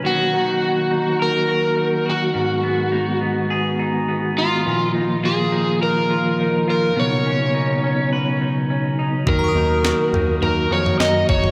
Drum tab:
SD |----------------|----------------|----------------|----------------|
FT |----------------|----------------|----------------|----------------|
BD |----------------|----------------|----------------|----------------|

SD |----o-------o---|
FT |o-----o-o--o--oo|
BD |o-------------o-|